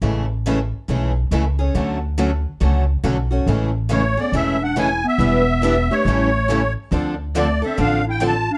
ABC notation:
X:1
M:4/4
L:1/8
Q:"Swing" 1/4=139
K:A
V:1 name="Accordion"
z8 | z8 | z2 c d e f g e- | e3 c4 z |
z2 d e =f =g a f |]
V:2 name="Clarinet"
z8 | z8 | z2 A, B, C D E B,- | B,3 A,4 z |
z2 A, =C D E =F D |]
V:3 name="Steel-string acoustic guitar"
[E,G,CEA] z [E,G,CEA] z [E,G,CEA] z [E,G,CEA] z | [D,A,CFA] z [D,A,CFA] z [D,A,CFA] z [D,A,CFA] z | [E,G,CEA] z [E,G,CEA] z [E,G,CEA] z [E,G,CEA] z | [E,=G,DEB] z [E,G,DEB] z [E,G,CEA] z [E,G,CEA] z |
[D,=F,=CDA] z [D,F,CDA] z [D,F,CDA] z [D,F,CDA] z |]
V:4 name="Steel-string acoustic guitar"
[C,E,A,CG] z [C,E,A,CG] z [C,E,A,CG] z [C,E,A,CG] [A,CG] | [D,F,A,CF] z [D,F,A,CF] z [D,F,A,CF] z [D,F,A,CF] [A,CF] | [C,E,A,CG] z [C,E,A,CG] [A,CG] [C,E,A,CG] z [C,E,A,CG] z | [E,B,D=G] z [E,B,DG] [B,DG] [C,E,A,CG] z [C,E,A,CG] z |
[D,=F,=CDA] z [D,F,CDA] [CDA] [D,F,CDA] z [D,F,CDA] z |]
V:5 name="Upright bass" clef=bass
A,,,4 B,,,2 C,,2 | D,,4 C,,2 B,,,2 | A,,,4 E,,,4 | E,,,4 A,,,4 |
D,,4 A,,,4 |]